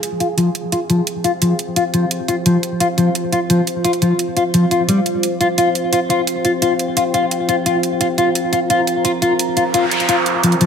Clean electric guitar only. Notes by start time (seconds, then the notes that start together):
0.20 F4
0.38 F3
0.72 F4
0.90 F3
1.24 F4
1.42 F3
1.76 F4
1.94 F3
2.28 F4
2.46 F3
2.80 F4
2.98 F3
3.32 F4
3.50 F3
3.85 F4
4.02 F3
4.37 F4
4.54 F3
4.71 F4
4.89 G3
5.41 F4
5.58 F4
5.93 F4
6.10 F4
6.45 F4
6.62 F4
6.97 F4
7.14 F4
7.49 F4
7.66 F4
8.01 F4
8.18 F4
8.53 F4
8.70 F4
9.05 F4
9.22 F4
9.57 F4
9.74 F4
10.09 F4
10.43 F3
10.61 F3